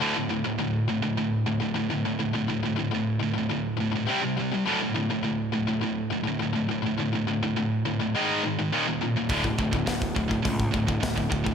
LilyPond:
<<
  \new Staff \with { instrumentName = "Distorted electric guitar" } { \clef bass \time 4/4 \key c \mixolydian \tempo 4 = 104 <d, a, d>16 <d, a,>16 <d, a,>16 <d, a,>16 <d, a,>8 <d, a,>16 <d, a,>16 <d, a,>8 <d, a,>16 <d, a,>16 <d, a,>16 <d, a,>16 <d, a,>16 <d, a,>16 | <d, a,>16 <d, a,>16 <d, a,>16 <d, a,>16 <d, a,>8 <d, a,>16 <d, a,>16 <d, a,>8 <d, a,>16 <d, a,>16 <c g c'>16 <c g>16 <c g>16 <c g>16 | <d, a, d>16 <d, a,>16 <d, a,>16 <d, a,>16 <d, a,>8 <d, a,>16 <d, a,>16 <d, a,>8 <d, a,>16 <d, a,>16 <d, a,>16 <d, a,>16 <d, a,>16 <d, a,>16 | <d, a,>16 <d, a,>16 <d, a,>16 <d, a,>16 <d, a,>8 <d, a,>16 <d, a,>16 <gis, dis gis>8 <gis, dis>16 <gis, dis>16 <ees, bes, ees>16 <ees, bes,>16 <ees, bes,>16 <ees, bes,>16 |
<d, a, d>16 <d, a,>16 <d, a,>16 <d, a,>16 <d, a,>8 <d, a,>16 <d, a,>16 <d, a,>8 <d, a,>16 <d, a,>16 <d, a,>16 <d, a,>16 <d, a,>16 <d, a,>16 | }
  \new Staff \with { instrumentName = "Distorted electric guitar" } { \clef bass \time 4/4 \key c \mixolydian <d, a, d>16 <d, a,>16 <d, a,>16 <d, a,>16 <d, a,>8 <d, a,>16 <d, a,>16 <d, a,>8 <d, a,>16 <d, a,>16 <d, a,>16 <d, a,>16 <d, a,>16 <d, a,>16 | <d, a,>16 <d, a,>16 <d, a,>16 <d, a,>16 <d, a,>8 <d, a,>16 <d, a,>16 <d, a,>8 <d, a,>16 <d, a,>16 <c g c'>16 <c g>16 <c g>16 <c g>16 | <d, a, d>16 <d, a,>16 <d, a,>16 <d, a,>16 <d, a,>8 <d, a,>16 <d, a,>16 <d, a,>8 <d, a,>16 <d, a,>16 <d, a,>16 <d, a,>16 <d, a,>16 <d, a,>16 | <d, a,>16 <d, a,>16 <d, a,>16 <d, a,>16 <d, a,>8 <d, a,>16 <d, a,>16 <gis, dis gis>8 <gis, dis>16 <gis, dis>16 <ees, bes, ees>16 <ees, bes,>16 <ees, bes,>16 <ees, bes,>16 |
<d, a, d>16 <d, a,>16 <d, a,>16 <d, a,>16 <d, a,>8 <d, a,>16 <d, a,>16 <d, a,>8 <d, a,>16 <d, a,>16 <d, a,>16 <d, a,>16 <d, a,>16 <d, a,>16 | }
  \new Staff \with { instrumentName = "Picked electric bass" } { \clef bass \time 4/4 \key c \mixolydian r1 | r1 | r1 | r1 |
d,,8 d,,8 d,,8 d,,8 cis,8 d,,8 d,,8 d,,8 | }
  \new DrumStaff \with { instrumentName = "Drums" } \drummode { \time 4/4 r4 r4 r4 r4 | r4 r4 r4 r4 | r4 r4 r4 r4 | r4 r4 r4 r4 |
<hho bd>16 bd16 bd16 bd16 <hho bd sn>16 bd16 bd16 bd16 <hho bd>16 bd16 bd16 bd16 <hho bd sn>16 bd16 bd16 bd16 | }
>>